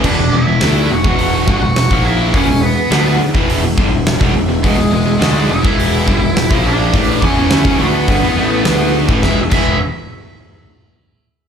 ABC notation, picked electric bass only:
X:1
M:4/4
L:1/16
Q:1/4=104
K:Emix
V:1 name="Picked electric bass" clef=bass
E,,, E,,, E,,, E,,, D,,2 E,,, E,,,3 =G,,, E,,,2 ^A,,,3 | E,,, E,,,2 z D,,2 z E,,,2 E,,, =G,,, E,,,2 E,,, E,,, E,,, | E,,, E,,, E,,, E,,, D,,2 E,,, E,,,3 =G,,, E,,,2 ^A,,,3 | A,,,2 E,, E,,, D,, E,,, D,,2 =G,,, E,, A,,,2 D,,3 A,,, |
E,,, z E,,,2 z12 |]